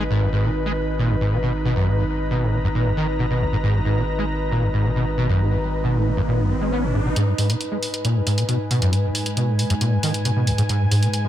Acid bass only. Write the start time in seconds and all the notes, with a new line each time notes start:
0.10 G#2
0.22 F#2
0.33 G#2
0.44 B2
0.66 G#3
0.99 A#2
1.10 F#2
1.21 G#2
1.32 B2
1.43 B2
1.65 B2
1.76 F#2
1.87 G#2
1.98 F#2
2.31 B2
2.42 G#2
2.53 B2
2.64 F#2
2.75 A#2
2.86 F#2
2.97 D#3
3.19 B2
3.30 B2
3.41 G#1
3.53 G#2
3.63 G#2
3.74 F#2
3.85 G#2
3.97 B2
4.19 G#3
4.52 A#2
4.63 F#2
4.74 G#2
4.85 B2
4.96 B2
5.18 B2
5.29 F#2
5.40 G#2
5.51 F#2
5.84 B2
5.95 G#2
6.06 B2
6.17 F#2
6.28 A#2
6.39 F#2
6.50 G#2
6.61 G#3
6.72 B3
6.83 G#2
6.94 G#2
7.05 B2
7.16 G#2
7.27 F#2
7.38 G#2
7.50 B2
7.72 G#3
8.05 A#2
8.16 F#2
8.27 G#2
8.38 B2
8.49 B2
8.71 B2
8.82 F#2
8.93 G#2
9.04 F#2
9.37 B2
9.48 G#2
9.59 B2
9.70 F#2
9.81 A#2
9.92 F#2
10.03 D#3
10.25 B2
10.36 B2
10.47 G#1
10.58 G#2
10.69 G#2
10.80 F#2
10.91 G#2
11.02 B2
11.25 G#3